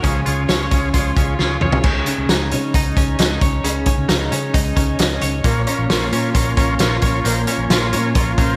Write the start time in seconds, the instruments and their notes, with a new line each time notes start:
0.02 fingered electric bass C#2, steel-string acoustic guitar C#3 F3 G#3 C#4 F4, transistor combo organ F4 G#4 C#5, kick, closed hi-hat
0.26 fingered electric bass C#2, steel-string acoustic guitar G#3 C#4 F4, transistor combo organ F4 G#4 C#5, closed hi-hat
0.48 fingered electric bass C#2, steel-string acoustic guitar F3 G#3 C#4 F4, transistor combo organ F4 G#4 C#5, clean electric guitar C#5, snare, closed hi-hat
0.71 fingered electric bass C#2, steel-string acoustic guitar G#3 C#4 F4, transistor combo organ F4 G#4 C#5, kick, closed hi-hat
0.94 fingered electric bass C#2, steel-string acoustic guitar C#3 F3 G#3 C#4 F4, transistor combo organ F4 G#4 C#5, kick, closed hi-hat
1.16 fingered electric bass C#2, steel-string acoustic guitar G#3 C#4 F4, transistor combo organ F4 G#4 C#5, kick, closed hi-hat
1.39 fingered electric bass C#2, steel-string acoustic guitar F3 G#3 C#4 F4, transistor combo organ F4 G#4 C#5, snare
1.61 fingered electric bass C2, steel-string acoustic guitar G#3 C#4 F4, transistor combo organ F4 G#4 C#5, clean electric guitar C#5, mid tom
1.72 floor tom
1.84 fingered electric bass C#2, steel-string acoustic guitar C#3 G#3 C#4 D#4, kick, crash
2.06 steel-string acoustic guitar G#3 C#4 D#4, closed hi-hat
2.18 fingered electric bass C#2
2.29 fingered electric bass C#2, steel-string acoustic guitar C#3 G#3 C#4 D#4, snare, closed hi-hat
2.51 fingered electric bass C#3, steel-string acoustic guitar G#3 C#4 D#4, closed hi-hat
2.74 fingered electric bass C#2, steel-string acoustic guitar C#3 G#3 C#4 D#4, kick, closed hi-hat
2.97 fingered electric bass C#2, steel-string acoustic guitar G#3 C#4 D#4, kick, closed hi-hat
3.19 fingered electric bass C#2, steel-string acoustic guitar C#3 G#3 C#4 D#4, snare, closed hi-hat
3.41 fingered electric bass C#2, steel-string acoustic guitar G#3 C#4 D#4, clean electric guitar C#5, kick, closed hi-hat
3.64 fingered electric bass C#2, steel-string acoustic guitar C#3 G#3 C#4 D#4, closed hi-hat
3.86 steel-string acoustic guitar G#3 C#4 D#4, kick, closed hi-hat
3.98 fingered electric bass C#2
4.09 fingered electric bass C#2, steel-string acoustic guitar C#3 G#3 C#4 D#4, snare, closed hi-hat
4.32 fingered electric bass C#3, steel-string acoustic guitar G#3 C#4 D#4, closed hi-hat
4.54 fingered electric bass C#2, steel-string acoustic guitar C#3 G#3 C#4 D#4, kick, closed hi-hat
4.76 fingered electric bass C#2, steel-string acoustic guitar G#3 C#4 D#4, kick, closed hi-hat
4.99 fingered electric bass C#2, steel-string acoustic guitar C#3 G#3 C#4 D#4, snare, closed hi-hat
5.21 fingered electric bass C#2, steel-string acoustic guitar G#3 C#4 D#4, clean electric guitar C#5, closed hi-hat
5.44 fingered electric bass A#1, steel-string acoustic guitar A#2 F3 A#3 C#4 F4, transistor combo organ F4 A#4 C#5, kick, closed hi-hat
5.67 steel-string acoustic guitar A#3 C#4 F4, transistor combo organ F4 A#4 C#5, closed hi-hat
5.79 fingered electric bass A#1
5.90 fingered electric bass A#1, steel-string acoustic guitar A#2 F3 A#3 C#4 F4, transistor combo organ F4 A#4 C#5, snare, closed hi-hat
6.12 fingered electric bass A#2, steel-string acoustic guitar A#3 C#4 F4, transistor combo organ F4 A#4 C#5, closed hi-hat
6.35 fingered electric bass A#1, steel-string acoustic guitar F3 A#3 C#4 F4, transistor combo organ F4 A#4 C#5, kick, closed hi-hat
6.57 fingered electric bass A#1, steel-string acoustic guitar A#3 C#4 F4, transistor combo organ F4 A#4 C#5, kick, closed hi-hat
6.79 fingered electric bass A#1, steel-string acoustic guitar A#2 F3 A#3 C#4 F4, transistor combo organ F4 A#4 C#5, snare, closed hi-hat
7.02 fingered electric bass A#1, steel-string acoustic guitar A#3 C#4 F4, transistor combo organ F4 A#4 C#5, clean electric guitar C#5, kick, closed hi-hat
7.24 fingered electric bass A#1, steel-string acoustic guitar A#2 F3 A#3 C#4 F4, transistor combo organ F4 A#4 C5, closed hi-hat
7.47 steel-string acoustic guitar A#3 C#4 F4, transistor combo organ F4 A#4 C#5, closed hi-hat
7.58 fingered electric bass A#1
7.70 fingered electric bass A#1, steel-string acoustic guitar A#2 F3 A#3 C#4 F4, transistor combo organ F4 A#4 C#5, snare, closed hi-hat
7.93 fingered electric bass A#2, steel-string acoustic guitar A#3 C#4 F4, transistor combo organ F4 A#4 C#5, closed hi-hat
8.15 fingered electric bass A#1, steel-string acoustic guitar F3 A#3 C#4 F4, transistor combo organ F4 A#4 C#5, kick, closed hi-hat
8.37 fingered electric bass A#1, steel-string acoustic guitar A#3 C#4 F4, transistor combo organ F4 A#4 C5, kick, closed hi-hat